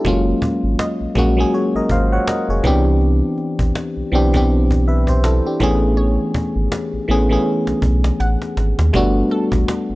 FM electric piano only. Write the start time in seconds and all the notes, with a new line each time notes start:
Already playing: E4 A4
0.05 F#3 G#3 A#3 C#4 F4
1.15 F#3 G#3 A#3 C#4 F#4
1.37 F#3 G#3 A#3 C#4 G#4
1.54 G#4 C#5
1.76 A#4 D#5
1.91 C5 F5
2.13 C#5 F#5
2.29 A#4 D#5
2.50 G#4 C#5
2.64 E3 B3 C4 D4 G4
4.12 E3 B3 C4 D4 G4
4.33 E3 B3 C4 D4 G4
4.88 B4 E5
5.09 G4 C5
5.25 E4 A4
5.46 D4 G4
5.60 E3 A3 B3 C#4 G#4
7.08 E3 A3 B3 C#4 G#4
7.29 E3 A3 B3 C#4 G#4
8.93 G3 A3 B3 D4 F#4